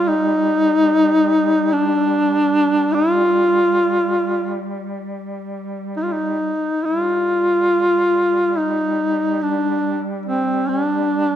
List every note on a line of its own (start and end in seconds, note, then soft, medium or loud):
0.00 6.67 G3 soft
0.09 1.74 D#4 loud
1.73 2.96 D4 loud
2.95 4.64 F4 medium
5.97 6.05 D#4 medium
6.04 6.14 F4 medium
6.13 6.87 D#4 medium
6.84 11.36 G3 soft
6.84 8.59 F4 medium
8.58 9.44 D#4 medium
9.42 10.00 D4 medium
10.26 10.70 C4 medium
10.69 11.36 D4 medium